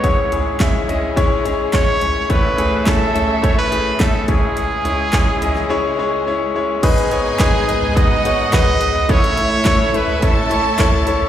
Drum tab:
CC |----------------|----------------|----------------|x---------------|
HH |x-x-x-x-x-x-x-x-|x-x-x-x-x-x-x-x-|x-x-x-x---------|xxx-x-x-x-x-x-x-|
CP |----x-------x---|----x-------x---|----x-----------|----x-------x---|
SD |----o-------o---|----o-------o---|----o--o--------|----o-------o---|
FT |--o---o-------o-|--o---o-------o-|--o---o---------|-------o-----o-o|
BD |o---o---o---o---|o---o---o---o-o-|----o-----------|o---o---o---o---|

CC |----------------|
HH |xxx-x-x-x-x-x-x-|
CP |----x-------x---|
SD |----o-------o---|
FT |-------o-----o-o|
BD |o---o---o---o---|